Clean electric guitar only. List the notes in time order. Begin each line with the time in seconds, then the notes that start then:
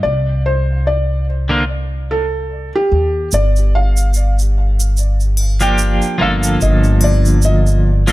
1.49 D3 A#3 C4 F4
5.61 F3 A#3 D4 G4
6.18 D3 F3 A#3
6.22 A4
8.07 F3 A#3 D4